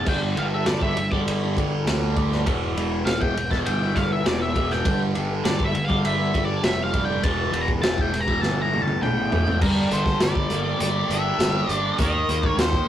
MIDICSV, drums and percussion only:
0, 0, Header, 1, 2, 480
1, 0, Start_track
1, 0, Tempo, 598205
1, 52, Time_signature, 4, 2, 24, 8
1, 5812, Tempo, 592885
1, 10376, End_track
2, 0, Start_track
2, 0, Title_t, "Drums"
2, 52, Note_on_c, 9, 36, 108
2, 53, Note_on_c, 9, 49, 95
2, 133, Note_off_c, 9, 36, 0
2, 133, Note_off_c, 9, 49, 0
2, 298, Note_on_c, 9, 51, 71
2, 378, Note_off_c, 9, 51, 0
2, 531, Note_on_c, 9, 51, 96
2, 532, Note_on_c, 9, 38, 107
2, 611, Note_off_c, 9, 51, 0
2, 612, Note_off_c, 9, 38, 0
2, 654, Note_on_c, 9, 36, 86
2, 734, Note_off_c, 9, 36, 0
2, 776, Note_on_c, 9, 51, 74
2, 856, Note_off_c, 9, 51, 0
2, 895, Note_on_c, 9, 36, 70
2, 976, Note_off_c, 9, 36, 0
2, 1025, Note_on_c, 9, 51, 103
2, 1105, Note_off_c, 9, 51, 0
2, 1258, Note_on_c, 9, 36, 85
2, 1267, Note_on_c, 9, 51, 73
2, 1338, Note_off_c, 9, 36, 0
2, 1347, Note_off_c, 9, 51, 0
2, 1503, Note_on_c, 9, 51, 98
2, 1504, Note_on_c, 9, 38, 107
2, 1584, Note_off_c, 9, 51, 0
2, 1585, Note_off_c, 9, 38, 0
2, 1737, Note_on_c, 9, 36, 84
2, 1737, Note_on_c, 9, 51, 69
2, 1817, Note_off_c, 9, 36, 0
2, 1818, Note_off_c, 9, 51, 0
2, 1864, Note_on_c, 9, 38, 35
2, 1944, Note_off_c, 9, 38, 0
2, 1978, Note_on_c, 9, 36, 109
2, 1979, Note_on_c, 9, 51, 96
2, 2058, Note_off_c, 9, 36, 0
2, 2059, Note_off_c, 9, 51, 0
2, 2226, Note_on_c, 9, 51, 75
2, 2307, Note_off_c, 9, 51, 0
2, 2462, Note_on_c, 9, 51, 93
2, 2463, Note_on_c, 9, 38, 108
2, 2542, Note_off_c, 9, 51, 0
2, 2543, Note_off_c, 9, 38, 0
2, 2580, Note_on_c, 9, 36, 91
2, 2660, Note_off_c, 9, 36, 0
2, 2707, Note_on_c, 9, 51, 69
2, 2787, Note_off_c, 9, 51, 0
2, 2818, Note_on_c, 9, 36, 71
2, 2824, Note_on_c, 9, 38, 38
2, 2898, Note_off_c, 9, 36, 0
2, 2905, Note_off_c, 9, 38, 0
2, 2940, Note_on_c, 9, 51, 90
2, 3020, Note_off_c, 9, 51, 0
2, 3178, Note_on_c, 9, 36, 78
2, 3182, Note_on_c, 9, 51, 67
2, 3183, Note_on_c, 9, 38, 37
2, 3258, Note_off_c, 9, 36, 0
2, 3262, Note_off_c, 9, 51, 0
2, 3263, Note_off_c, 9, 38, 0
2, 3418, Note_on_c, 9, 51, 92
2, 3419, Note_on_c, 9, 38, 108
2, 3498, Note_off_c, 9, 51, 0
2, 3499, Note_off_c, 9, 38, 0
2, 3656, Note_on_c, 9, 36, 86
2, 3658, Note_on_c, 9, 51, 69
2, 3736, Note_off_c, 9, 36, 0
2, 3739, Note_off_c, 9, 51, 0
2, 3776, Note_on_c, 9, 38, 36
2, 3856, Note_off_c, 9, 38, 0
2, 3894, Note_on_c, 9, 36, 114
2, 3895, Note_on_c, 9, 51, 92
2, 3974, Note_off_c, 9, 36, 0
2, 3975, Note_off_c, 9, 51, 0
2, 4134, Note_on_c, 9, 51, 71
2, 4215, Note_off_c, 9, 51, 0
2, 4375, Note_on_c, 9, 51, 99
2, 4376, Note_on_c, 9, 38, 110
2, 4455, Note_off_c, 9, 51, 0
2, 4456, Note_off_c, 9, 38, 0
2, 4493, Note_on_c, 9, 36, 84
2, 4573, Note_off_c, 9, 36, 0
2, 4612, Note_on_c, 9, 51, 73
2, 4692, Note_off_c, 9, 51, 0
2, 4732, Note_on_c, 9, 36, 75
2, 4813, Note_off_c, 9, 36, 0
2, 4853, Note_on_c, 9, 51, 98
2, 4933, Note_off_c, 9, 51, 0
2, 5091, Note_on_c, 9, 36, 79
2, 5093, Note_on_c, 9, 51, 77
2, 5171, Note_off_c, 9, 36, 0
2, 5173, Note_off_c, 9, 51, 0
2, 5325, Note_on_c, 9, 51, 101
2, 5326, Note_on_c, 9, 38, 110
2, 5405, Note_off_c, 9, 51, 0
2, 5406, Note_off_c, 9, 38, 0
2, 5565, Note_on_c, 9, 51, 75
2, 5567, Note_on_c, 9, 36, 85
2, 5646, Note_off_c, 9, 51, 0
2, 5647, Note_off_c, 9, 36, 0
2, 5806, Note_on_c, 9, 36, 111
2, 5807, Note_on_c, 9, 51, 95
2, 5887, Note_off_c, 9, 36, 0
2, 5888, Note_off_c, 9, 51, 0
2, 6048, Note_on_c, 9, 51, 75
2, 6129, Note_off_c, 9, 51, 0
2, 6167, Note_on_c, 9, 36, 81
2, 6248, Note_off_c, 9, 36, 0
2, 6290, Note_on_c, 9, 51, 102
2, 6291, Note_on_c, 9, 38, 117
2, 6371, Note_off_c, 9, 51, 0
2, 6372, Note_off_c, 9, 38, 0
2, 6409, Note_on_c, 9, 36, 91
2, 6490, Note_off_c, 9, 36, 0
2, 6535, Note_on_c, 9, 51, 71
2, 6536, Note_on_c, 9, 38, 36
2, 6616, Note_off_c, 9, 51, 0
2, 6617, Note_off_c, 9, 38, 0
2, 6650, Note_on_c, 9, 36, 72
2, 6731, Note_off_c, 9, 36, 0
2, 6772, Note_on_c, 9, 38, 66
2, 6853, Note_off_c, 9, 38, 0
2, 7020, Note_on_c, 9, 48, 74
2, 7101, Note_off_c, 9, 48, 0
2, 7134, Note_on_c, 9, 48, 68
2, 7215, Note_off_c, 9, 48, 0
2, 7259, Note_on_c, 9, 47, 82
2, 7340, Note_off_c, 9, 47, 0
2, 7495, Note_on_c, 9, 43, 96
2, 7576, Note_off_c, 9, 43, 0
2, 7617, Note_on_c, 9, 43, 88
2, 7698, Note_off_c, 9, 43, 0
2, 7732, Note_on_c, 9, 36, 112
2, 7734, Note_on_c, 9, 49, 123
2, 7813, Note_off_c, 9, 36, 0
2, 7815, Note_off_c, 9, 49, 0
2, 7973, Note_on_c, 9, 42, 82
2, 8054, Note_off_c, 9, 42, 0
2, 8091, Note_on_c, 9, 36, 85
2, 8093, Note_on_c, 9, 38, 37
2, 8172, Note_off_c, 9, 36, 0
2, 8174, Note_off_c, 9, 38, 0
2, 8209, Note_on_c, 9, 42, 104
2, 8210, Note_on_c, 9, 38, 117
2, 8290, Note_off_c, 9, 42, 0
2, 8291, Note_off_c, 9, 38, 0
2, 8331, Note_on_c, 9, 36, 89
2, 8412, Note_off_c, 9, 36, 0
2, 8449, Note_on_c, 9, 42, 83
2, 8530, Note_off_c, 9, 42, 0
2, 8694, Note_on_c, 9, 42, 108
2, 8775, Note_off_c, 9, 42, 0
2, 8938, Note_on_c, 9, 42, 85
2, 9019, Note_off_c, 9, 42, 0
2, 9179, Note_on_c, 9, 42, 108
2, 9180, Note_on_c, 9, 38, 111
2, 9260, Note_off_c, 9, 42, 0
2, 9261, Note_off_c, 9, 38, 0
2, 9414, Note_on_c, 9, 42, 81
2, 9495, Note_off_c, 9, 42, 0
2, 9650, Note_on_c, 9, 42, 108
2, 9654, Note_on_c, 9, 36, 121
2, 9731, Note_off_c, 9, 42, 0
2, 9735, Note_off_c, 9, 36, 0
2, 9897, Note_on_c, 9, 42, 83
2, 9978, Note_off_c, 9, 42, 0
2, 10014, Note_on_c, 9, 36, 85
2, 10095, Note_off_c, 9, 36, 0
2, 10138, Note_on_c, 9, 42, 102
2, 10139, Note_on_c, 9, 38, 121
2, 10219, Note_off_c, 9, 42, 0
2, 10220, Note_off_c, 9, 38, 0
2, 10253, Note_on_c, 9, 36, 88
2, 10253, Note_on_c, 9, 38, 35
2, 10334, Note_off_c, 9, 36, 0
2, 10334, Note_off_c, 9, 38, 0
2, 10376, End_track
0, 0, End_of_file